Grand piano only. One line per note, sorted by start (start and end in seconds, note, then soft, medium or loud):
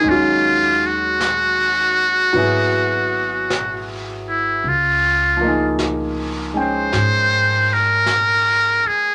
0.00 2.32 D#3 soft
0.00 2.34 G#3 soft
0.07 2.31 F#3 soft
0.07 2.36 C#4 soft
2.33 4.63 F#3 soft
2.33 4.64 B3 soft
2.33 4.65 E4 soft
2.38 4.66 G#4 soft
5.37 9.15 F3 soft
5.41 9.15 A#3 soft
5.41 9.15 D#4 soft
5.48 9.15 G#4 soft
6.54 9.15 G#3 soft
6.54 9.15 C#4 soft
6.54 9.15 G5 soft